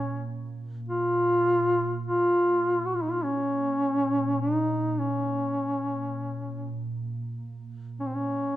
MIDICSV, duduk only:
0, 0, Header, 1, 2, 480
1, 0, Start_track
1, 0, Key_signature, -5, "minor"
1, 0, Tempo, 1169591
1, 360, Time_signature, 3, 2, 24, 8
1, 2285, Tempo, 1209677
1, 3474, End_track
2, 0, Start_track
2, 0, Title_t, "Duduk"
2, 0, Program_c, 0, 69
2, 0, Note_on_c, 0, 61, 86
2, 121, Note_off_c, 0, 61, 0
2, 363, Note_on_c, 0, 65, 122
2, 821, Note_off_c, 0, 65, 0
2, 845, Note_on_c, 0, 65, 111
2, 1171, Note_on_c, 0, 66, 79
2, 1177, Note_off_c, 0, 65, 0
2, 1208, Note_on_c, 0, 65, 72
2, 1215, Note_off_c, 0, 66, 0
2, 1241, Note_on_c, 0, 63, 78
2, 1247, Note_off_c, 0, 65, 0
2, 1278, Note_on_c, 0, 65, 80
2, 1284, Note_off_c, 0, 63, 0
2, 1329, Note_on_c, 0, 61, 90
2, 1335, Note_off_c, 0, 65, 0
2, 1805, Note_off_c, 0, 61, 0
2, 1808, Note_on_c, 0, 63, 89
2, 2045, Note_on_c, 0, 61, 75
2, 2052, Note_off_c, 0, 63, 0
2, 2769, Note_off_c, 0, 61, 0
2, 3249, Note_on_c, 0, 61, 71
2, 3273, Note_on_c, 0, 60, 59
2, 3279, Note_off_c, 0, 61, 0
2, 3305, Note_on_c, 0, 61, 82
2, 3311, Note_off_c, 0, 60, 0
2, 3474, Note_off_c, 0, 61, 0
2, 3474, End_track
0, 0, End_of_file